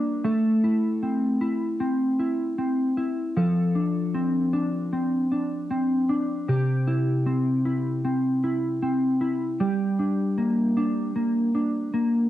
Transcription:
Already playing: G3 A#3 D4 G4
0.24 A3 A4
0.64 E4
1.03 C4
1.41 E4
1.80 C4
2.20 E4
2.58 C4
2.97 E4
3.37 F3 A4
3.75 D4
4.15 C4
4.53 D4
4.93 C4
5.32 D4
5.71 C4
6.09 D4
6.48 C3 G4
6.87 E4
7.26 C4
7.65 E4
8.05 C4
8.44 E4
8.83 C4
9.21 E4
9.60 G3 G4
9.99 D4
10.38 A#3
10.77 D4
11.16 A#3
11.55 D4
11.94 A#3

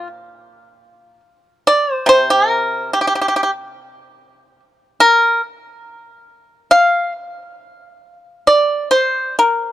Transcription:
Already playing: A#2
1.67 D5
1.92 C5
2.06 C3 C5
2.30 A#4
2.93 G4
3.01 G4
3.07 G4
3.15 G4
3.21 G4
3.28 G4
3.36 G4
3.43 G4
5.00 A#4
6.71 F5
8.47 D5
8.91 C5
9.39 A#4

